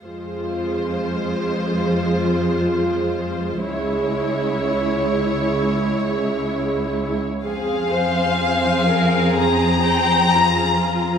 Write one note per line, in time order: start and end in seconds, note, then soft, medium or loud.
0.03 3.60 F2 soft
0.03 3.59 G#3 soft
0.03 3.59 F4 soft
0.03 3.60 C5 soft
3.63 7.20 C#2 soft
3.63 7.20 G#3 soft
3.63 7.20 E4 soft
3.63 7.24 C#5 soft
7.44 11.18 F2 soft
7.44 11.18 C4 soft
7.44 7.88 G#4 soft
7.44 11.18 G#4 soft
7.44 9.35 F5 soft
7.92 8.38 C5 soft
8.39 8.88 C5 soft
8.88 9.37 A#4 soft
9.37 9.86 G#4 soft
9.37 11.18 A#5 medium
9.85 10.32 G5 soft
10.33 11.18 F4 soft